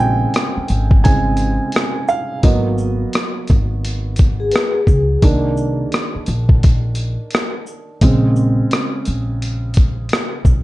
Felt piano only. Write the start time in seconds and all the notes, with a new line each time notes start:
Already playing: C#3 G#3 C4 F5 G#5
0.00 G5
1.04 C#3 G#3 C4 G#5
2.09 F5
2.43 F#3 A#3 B3 D#5
5.23 D#3 A#3 D4
8.02 C#3 G#3 C4